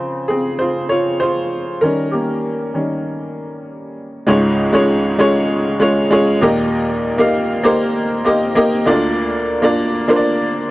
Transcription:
Already playing: C#3 F3 C4 F4 C5
0.28 C4 G#4
0.59 F4 C5
0.89 F4 C#5
1.20 F4 C5
1.81 D#3 G3 C#4 A#4
2.11 A#3 G4
2.74 D#3 G3 C#4
4.27 C#2 G#2 G#3 C#4 F4 G#4 C#5
4.73 G#3 C#4 F4 G#4 C#5
5.18 G#3 C#4 F4 G#4 C#5
5.80 G#3 C#4 F4 G#4 C#5
6.11 G#3 C#4 F4 G#4 C#5
6.41 D#2 A#2 A#3 D#4 G4 A#4 D#5
7.18 A#3 D#4 G4 A#4 F5
7.63 A#3 D#4 G4 A#4 C5
8.25 A#3 D#4 G4 A#4 D#5
8.55 A#3 D#4 G4 A#4 D#5
8.86 D2 D3 A#3 D4 F4 A#4 D5
9.62 A#3 D4 F4 A#4 D5
10.08 A#3 D4 F4 A#4 C5
10.16 D5

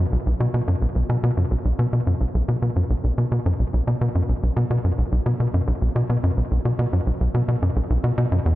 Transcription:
0.12 B1
0.26 B1
0.40 B2
0.54 B2
0.68 F#2
0.82 B1
0.95 B1
1.09 B2
1.23 B2
1.37 F#2
1.51 B1
1.65 B1
1.79 B2
1.93 B2
2.07 F#2
2.21 B1
2.34 B1
2.48 B2
2.62 B2
2.76 F#2
2.90 B1
3.04 B1
3.18 B2
3.32 B2
3.46 F#2
3.59 B1
3.73 B1
3.87 B2
4.01 B2
4.15 F#2
4.29 B1
4.43 B1
4.57 B2
4.70 B2
4.84 F#2
4.98 B1
5.12 B1
5.26 B2
5.40 B2
5.54 F#2
5.68 B1
5.82 B1
5.96 B2
6.10 B2
6.23 F#2
6.37 B1
6.51 B1
6.65 B2
6.79 B2
6.93 F#2
7.07 B1
7.20 B1
7.34 B2
7.48 B2
7.62 F#2
7.76 B1
7.90 B1
8.04 B2
8.18 B2
8.32 F#2
8.46 E2

